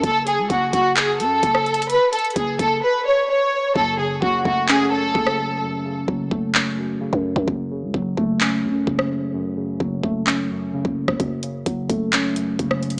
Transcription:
0.03 808-style bass F#1, violin section A4, kick, closed hi-hat
0.27 violin section G#4, closed hi-hat
0.38 808-style bass C#2
0.50 808-style bass F#1, violin section F#4, kick, closed hi-hat
0.73 808-style bass F#1, violin section F#4, kick, closed hi-hat
0.96 violin section G#4, clap, closed hi-hat
1.20 808-style bass F#2, violin section A4, closed hi-hat
1.43 808-style bass F#1, kick, closed hi-hat
1.55 cross-stick
1.66 closed hi-hat
1.74 closed hi-hat
1.82 closed hi-hat
1.89 violin section B4, closed hi-hat
2.13 violin section A4, closed hi-hat, open hi-hat
2.19 closed hi-hat
2.25 closed hi-hat
2.30 closed hi-hat
2.36 808-style bass F#1, violin section G#4, kick, closed hi-hat
2.59 808-style bass F#1, violin section A4, kick, closed hi-hat
2.82 violin section B4
3.06 violin section C#5
3.29 violin section C#5
3.76 808-style bass F#1, synth keys F#2, violin section A4, kick
3.99 synth keys C#3, violin section G#4
4.22 808-style bass F#1, synth keys F#3, violin section F#4, kick
4.45 808-style bass F#1, synth keys A3, violin section F#4, kick
4.69 synth keys C#4, violin section G#4, clap
4.92 synth keys F#2, violin section A4
5.15 808-style bass F#1, synth keys C#3, kick
5.27 cross-stick
5.62 synth keys F#2
5.85 synth keys C#3
6.08 808-style bass F#1, synth keys F#3, kick
6.31 808-style bass F#1, synth keys A3, kick
6.55 synth keys C#4, clap
6.78 synth keys F#2
7.01 synth keys C#3
7.13 808-style bass F#2, kick
7.36 808-style bass F#2, kick
7.48 808-style bass F#1, synth keys F#2, kick
7.71 synth keys C#3
7.83 808-style bass C#2
7.94 808-style bass F#1, synth keys F#3, kick
8.17 808-style bass F#1, synth keys A3, kick
8.41 synth keys C#4, clap
8.64 synth keys F#2, 808-style bass F#2
8.87 808-style bass F#1, synth keys C#3, kick
8.99 cross-stick
9.34 synth keys F#2
9.57 synth keys C#3
9.80 808-style bass F#1, synth keys F#3, kick
10.03 808-style bass F#1, synth keys A3, kick
10.27 synth keys C#4, clap
10.50 synth keys F#2
10.74 synth keys C#3
10.85 808-style bass F#1, kick
11.08 808-style bass F#1, kick, cross-stick
11.20 808-style bass F#1, synth keys F#2, kick, closed hi-hat
11.43 synth keys C#3, closed hi-hat
11.66 808-style bass F#1, synth keys F#3, kick, closed hi-hat
11.89 808-style bass F#1, synth keys A3, kick, closed hi-hat
12.13 synth keys C#4, clap, closed hi-hat
12.36 synth keys F#2, closed hi-hat
12.59 808-style bass F#1, synth keys C#3, kick, closed hi-hat
12.71 cross-stick
12.83 closed hi-hat
12.90 closed hi-hat

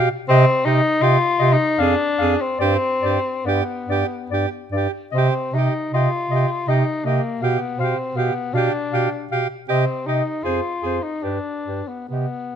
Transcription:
0.29 bass clarinet C3, tenor saxophone C4, alto saxophone G4, clarinet D#5
0.65 bass clarinet C3, tenor saxophone D#4, alto saxophone G4, clarinet D#5
1.01 bass clarinet C3, tenor saxophone F4, alto saxophone G4, clarinet D#5
1.39 bass clarinet C3, alto saxophone G4, clarinet D#5
1.53 tenor saxophone D#4
1.78 bass clarinet F2, tenor saxophone D4, alto saxophone G#4, clarinet F5
2.19 bass clarinet F2, alto saxophone G#4, clarinet F5
2.41 tenor saxophone C4
2.59 bass clarinet G2, tenor saxophone C4, alto saxophone G4, clarinet D5
3.02 bass clarinet G2, alto saxophone G4, clarinet D5
3.46 bass clarinet G2, tenor saxophone B3, alto saxophone G4, clarinet D5
3.88 bass clarinet G2, alto saxophone G4, clarinet D5
4.30 bass clarinet G2, alto saxophone G4, clarinet D5
4.72 bass clarinet G2, alto saxophone G4, clarinet D5
5.12 bass clarinet C3, tenor saxophone C4, clarinet D#5
5.18 alto saxophone G4
5.53 bass clarinet C3, tenor saxophone D#4, clarinet D#5
5.57 alto saxophone G4
5.92 bass clarinet C3, tenor saxophone F4, alto saxophone G4, clarinet D#5
6.30 bass clarinet C3, clarinet D#5
6.35 alto saxophone G4
6.68 bass clarinet C3, tenor saxophone D#4, alto saxophone G4, clarinet D#5
7.04 bass clarinet C3, tenor saxophone A#3, alto saxophone G4, clarinet D#5
7.41 bass clarinet B2, tenor saxophone B3, alto saxophone G4, clarinet F5
7.78 bass clarinet B2, tenor saxophone C4, alto saxophone G4, clarinet F5
8.15 bass clarinet B2, tenor saxophone B3, alto saxophone G4, clarinet F5
8.54 bass clarinet B2, tenor saxophone D4, alto saxophone G4, clarinet F5
8.93 bass clarinet B2, alto saxophone G4, clarinet F5
9.31 bass clarinet B2, alto saxophone G4, clarinet F5
9.68 bass clarinet C3, tenor saxophone C4, alto saxophone G4, clarinet D#5
10.06 bass clarinet C3, tenor saxophone D#4, alto saxophone G4, clarinet D#5
10.44 bass clarinet F2, tenor saxophone F4, alto saxophone G#4, clarinet C5
10.82 bass clarinet F2, alto saxophone G#4, clarinet C5
11.03 tenor saxophone D#4
11.23 bass clarinet G2, tenor saxophone D4, alto saxophone G4, clarinet B4
11.66 bass clarinet G2, alto saxophone G4, clarinet B4
11.88 tenor saxophone B3
12.09 bass clarinet C3, tenor saxophone B3, alto saxophone G4, clarinet D#5

